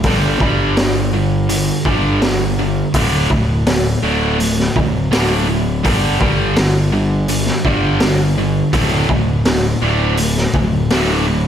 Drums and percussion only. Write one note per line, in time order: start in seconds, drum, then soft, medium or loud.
0.03 kick loud
0.03 open hi-hat medium
0.40 kick medium
0.77 snare loud
0.77 open hi-hat medium
1.49 open hi-hat medium
1.85 kick medium
2.22 snare loud
2.22 open hi-hat medium
2.94 kick loud
2.94 open hi-hat medium
3.30 kick medium
3.66 snare loud
3.66 open hi-hat medium
4.40 open hi-hat medium
4.59 snare soft
4.76 kick medium
5.13 snare loud
5.13 open hi-hat medium
5.85 kick loud
5.85 open hi-hat medium
6.21 kick medium
6.56 snare loud
6.56 open hi-hat medium
7.28 open hi-hat medium
7.46 snare soft
7.65 kick medium
8.00 snare loud
8.00 open hi-hat medium
8.73 kick loud
8.73 open hi-hat medium
9.09 kick medium
9.45 snare loud
9.45 open hi-hat medium
10.17 open hi-hat medium
10.37 snare soft
10.54 kick medium
10.90 snare loud
10.90 open hi-hat medium